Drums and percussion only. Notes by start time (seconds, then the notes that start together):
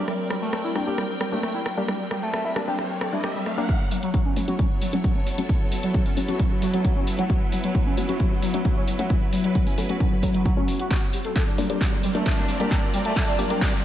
0.08 cross-stick
0.30 cross-stick
0.53 cross-stick
0.76 cross-stick
0.98 cross-stick
1.21 cross-stick
1.43 cross-stick
1.66 cross-stick
1.88 cross-stick
2.11 cross-stick
2.33 cross-stick
2.56 cross-stick
2.79 cross-stick
3.01 cross-stick
3.24 cross-stick
3.46 cross-stick
3.69 kick, closed hi-hat
3.91 open hi-hat
4.03 closed hi-hat
4.14 kick, closed hi-hat
4.36 open hi-hat
4.48 closed hi-hat
4.59 kick, closed hi-hat
4.82 open hi-hat
4.93 closed hi-hat
5.04 kick, closed hi-hat
5.27 open hi-hat
5.38 closed hi-hat
5.49 kick, closed hi-hat
5.72 open hi-hat
5.83 closed hi-hat
5.94 kick, closed hi-hat
6.06 open hi-hat
6.17 open hi-hat
6.28 closed hi-hat
6.39 kick, closed hi-hat
6.62 open hi-hat
6.74 closed hi-hat
6.85 kick, closed hi-hat
7.07 open hi-hat
7.19 closed hi-hat
7.30 kick, closed hi-hat
7.52 open hi-hat
7.64 closed hi-hat
7.75 kick, closed hi-hat
7.97 open hi-hat
8.09 closed hi-hat
8.20 kick, closed hi-hat
8.42 open hi-hat
8.54 closed hi-hat
8.65 kick, closed hi-hat
8.88 open hi-hat
8.99 closed hi-hat
9.10 kick, closed hi-hat
9.33 open hi-hat
9.44 closed hi-hat
9.55 kick, closed hi-hat
9.67 open hi-hat
9.78 open hi-hat
9.89 closed hi-hat
10.00 kick, closed hi-hat
10.23 kick, open hi-hat
10.34 closed hi-hat
10.45 kick, closed hi-hat
10.68 open hi-hat
10.79 closed hi-hat
10.91 kick, snare, closed hi-hat
11.13 open hi-hat
11.25 closed hi-hat
11.36 kick, snare, closed hi-hat
11.58 open hi-hat
11.70 closed hi-hat
11.81 kick, snare, closed hi-hat
12.03 open hi-hat
12.15 closed hi-hat
12.26 kick, snare, closed hi-hat
12.48 open hi-hat
12.60 closed hi-hat
12.71 kick, snare, closed hi-hat
12.94 open hi-hat
13.05 closed hi-hat
13.16 kick, snare, closed hi-hat
13.28 open hi-hat
13.39 open hi-hat
13.50 closed hi-hat
13.61 kick, snare, closed hi-hat